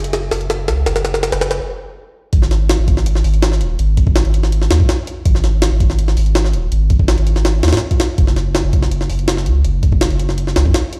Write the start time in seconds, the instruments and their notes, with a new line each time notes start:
Already playing: sub bass F#1
0.04 closed hi-hat
0.13 snare, closed hi-hat
0.31 sub bass F#1, snare, open hi-hat
0.41 closed hi-hat
0.50 snare, closed hi-hat
0.68 sub bass C#2, snare, closed hi-hat
0.86 sub bass F#1, snare, closed hi-hat
0.96 snare
1.05 snare, closed hi-hat
1.14 snare
1.23 snare, closed hi-hat
1.32 sub bass F#1, snare, closed hi-hat
1.41 snare, closed hi-hat
1.51 snare
2.33 sub bass G#1, kick, closed hi-hat
2.42 snare
2.51 snare, closed hi-hat
2.69 snare, closed hi-hat
2.79 sub bass G#1
2.88 kick, closed hi-hat
2.97 snare
3.06 closed hi-hat
3.15 snare
3.24 sub bass G#1, open hi-hat
3.34 closed hi-hat
3.42 snare, closed hi-hat
3.52 snare
3.61 sub bass D#1, closed hi-hat
3.79 sub bass G#1, closed hi-hat
3.97 kick, closed hi-hat
4.07 kick
4.16 snare, closed hi-hat
4.25 sub bass G#1, closed hi-hat
4.34 closed hi-hat
4.43 snare
4.52 closed hi-hat
4.62 snare
4.71 sub bass D#2, snare, closed hi-hat
4.80 sub bass G#2, kick
4.89 snare, closed hi-hat
5.07 closed hi-hat
5.25 sub bass G#1, kick, closed hi-hat
5.35 snare
5.44 snare, closed hi-hat
5.62 snare, closed hi-hat
5.71 sub bass G#1
5.80 kick, closed hi-hat
5.90 snare
5.99 closed hi-hat
6.08 snare
6.17 sub bass G#1, open hi-hat
6.26 closed hi-hat
6.35 snare, closed hi-hat
6.45 snare
6.53 sub bass D#1, closed hi-hat
6.72 sub bass G#1, closed hi-hat
6.90 kick, closed hi-hat
6.99 kick
7.08 snare, closed hi-hat
7.18 sub bass G#1, closed hi-hat
7.27 closed hi-hat
7.36 snare
7.45 snare, closed hi-hat
7.63 sub bass D#2, snare, closed hi-hat
7.68 snare, closed hi-hat
7.73 sub bass G#2, snare, closed hi-hat
7.77 snare, closed hi-hat
7.91 kick, closed hi-hat
8.00 snare, closed hi-hat
8.18 sub bass F#1, kick, closed hi-hat
8.27 snare
8.36 snare, closed hi-hat
8.55 snare, closed hi-hat
8.64 sub bass F#1
8.73 kick, closed hi-hat
8.82 snare
8.91 closed hi-hat
9.01 snare
9.10 sub bass F#1, open hi-hat
9.19 closed hi-hat
9.28 snare, closed hi-hat
9.37 snare
9.46 sub bass C#2, closed hi-hat
9.64 sub bass F#1, closed hi-hat
9.83 kick, closed hi-hat
9.92 kick
10.01 snare, closed hi-hat
10.10 sub bass F#1, closed hi-hat
10.19 closed hi-hat
10.29 snare
10.38 closed hi-hat
10.47 snare
10.56 sub bass C#2, snare, closed hi-hat
10.65 sub bass F#2, kick
10.74 snare, closed hi-hat
10.93 closed hi-hat